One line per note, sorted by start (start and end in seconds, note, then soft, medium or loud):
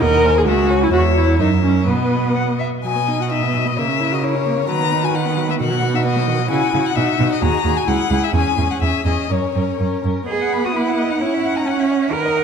0.01 0.48 D#2 soft
0.01 0.39 A#4 medium
0.01 0.26 D#5 soft
0.01 0.27 F#5 soft
0.25 0.47 C5 soft
0.25 0.47 G#5 soft
0.38 0.47 G#4 soft
0.47 0.92 C#2 medium
0.47 0.85 F#4 medium
0.47 0.72 G#4 soft
0.47 0.71 E5 soft
0.70 0.91 C#5 soft
0.70 0.93 G#5 soft
0.83 0.92 E4 medium
0.92 1.40 E2 soft
0.92 1.01 F#4 medium
0.92 1.40 C#5 soft
0.92 1.36 E5 soft
1.17 1.39 E4 soft
1.38 1.88 F#2 soft
1.38 1.48 D#4 medium
1.38 1.89 A#4 soft
1.38 1.90 E5 soft
1.63 1.87 C#4 soft
1.87 2.63 B2 soft
1.87 2.59 B3 soft
1.87 2.31 B4 soft
1.87 2.64 D#5 soft
2.35 2.43 F#5 soft
2.59 2.67 E5 soft
2.82 3.79 B2 soft
2.82 2.97 F#3 soft
2.82 3.78 D#5 soft
2.82 3.23 G#5 medium
2.96 3.10 B3 soft
3.08 3.21 D#4 soft
3.20 3.32 F#4 soft
3.20 3.31 F#5 soft
3.31 3.44 D#4 soft
3.31 3.70 E5 soft
3.43 3.55 B3 soft
3.54 3.67 F#3 soft
3.65 3.77 B3 soft
3.65 3.80 D#5 soft
3.77 4.69 C#3 soft
3.77 3.90 A#3 soft
3.77 4.71 A#4 soft
3.77 4.15 E5 medium
3.88 4.01 C#4 soft
4.00 4.13 E4 soft
4.12 4.24 F#4 soft
4.12 4.26 D#5 soft
4.23 4.36 E4 soft
4.23 4.69 C#5 soft
4.35 4.47 C#4 soft
4.46 4.59 A#3 soft
4.57 4.68 C#4 soft
4.68 5.62 D#3 soft
4.68 4.82 F#3 soft
4.68 5.60 B4 soft
4.68 5.06 A#5 medium
4.80 4.93 B3 soft
4.92 5.04 D#4 soft
5.03 5.16 F#4 soft
5.03 5.17 G#5 medium
5.14 5.27 D#4 soft
5.14 5.49 F#5 soft
5.26 5.38 B3 soft
5.37 5.50 F#3 soft
5.48 5.59 B3 soft
5.48 5.54 E5 soft
5.59 6.50 B2 soft
5.59 5.72 D#3 soft
5.59 6.50 F#4 soft
5.59 5.97 F#5 medium
5.71 5.84 F#3 soft
5.82 5.95 B3 soft
5.94 6.06 D#4 soft
5.94 6.05 E5 soft
6.05 6.17 B3 soft
6.05 6.50 D#5 medium
6.16 6.29 F#3 soft
6.27 6.40 D#3 soft
6.39 6.49 F#3 soft
6.50 6.59 C#3 soft
6.50 6.73 E4 soft
6.50 6.73 F#4 soft
6.50 6.88 G#5 medium
6.73 6.82 C#3 soft
6.73 6.95 E4 soft
6.73 6.96 F#4 soft
6.86 6.97 F#5 medium
6.96 7.05 B2 soft
6.96 7.18 D#4 soft
6.96 7.19 F#4 soft
6.96 7.30 E5 medium
7.19 7.28 B2 soft
7.19 7.41 D#4 soft
7.19 7.42 F#4 soft
7.32 7.44 D#5 medium
7.42 7.51 D#2 soft
7.42 7.64 F#4 soft
7.42 7.64 G#4 soft
7.42 7.79 A#5 medium
7.65 7.73 D#2 soft
7.65 7.87 F#4 soft
7.65 7.86 G#4 soft
7.77 7.89 G#5 soft
7.87 7.97 C#2 soft
7.87 8.10 E4 soft
7.87 8.09 G#4 soft
7.87 8.25 F#5 medium
8.10 8.19 C#2 soft
8.10 8.34 E4 soft
8.10 8.33 G#4 soft
8.24 8.34 E5 soft
8.34 8.42 E2 soft
8.34 8.58 C#4 soft
8.34 8.57 G#4 soft
8.34 8.72 G#5 medium
8.58 8.66 E2 soft
8.58 8.82 C#4 soft
8.58 8.80 G#4 soft
8.71 8.81 F#5 soft
8.81 8.90 E2 soft
8.81 9.06 C#4 soft
8.81 9.05 G#4 soft
8.81 9.05 E5 medium
9.05 9.13 E2 soft
9.05 9.30 C#4 soft
9.05 9.30 G#4 soft
9.05 9.32 D#5 soft
9.30 9.39 F#2 soft
9.30 9.55 C#4 soft
9.30 9.54 A#4 soft
9.30 10.05 C#5 soft
9.55 9.64 F#2 soft
9.55 9.79 C#4 soft
9.55 9.79 A#4 soft
9.80 9.88 F#2 soft
9.80 10.04 C#4 soft
9.80 10.04 A#4 soft
10.04 10.12 F#2 soft
10.04 10.28 C#4 soft
10.04 10.28 A#4 soft
10.28 11.23 B3 soft
10.28 10.66 G#4 soft
10.28 10.43 D#5 soft
10.28 12.08 F#5 soft
10.41 10.54 F#5 soft
10.53 10.67 B5 soft
10.64 10.74 F#4 soft
10.64 10.77 D#6 soft
10.75 11.12 E4 soft
10.75 10.89 B5 soft
10.88 11.00 F#5 soft
10.99 11.12 D#5 soft
11.10 11.23 D#4 soft
11.10 11.21 F#5 soft
11.21 12.12 C#4 soft
11.21 11.58 E4 soft
11.21 11.35 C#5 soft
11.34 11.47 E5 soft
11.45 11.59 F#5 soft
11.57 11.67 D#4 soft
11.57 11.69 A#5 soft
11.67 12.14 C#4 medium
11.67 11.80 F#5 soft
11.79 11.93 E5 soft
11.91 12.03 C#5 soft
12.02 12.13 E5 soft
12.13 12.44 D#3 soft
12.13 12.44 A#4 medium
12.13 12.26 B4 soft
12.13 12.44 F#5 soft
12.25 12.38 D#5 soft
12.36 12.44 F#5 soft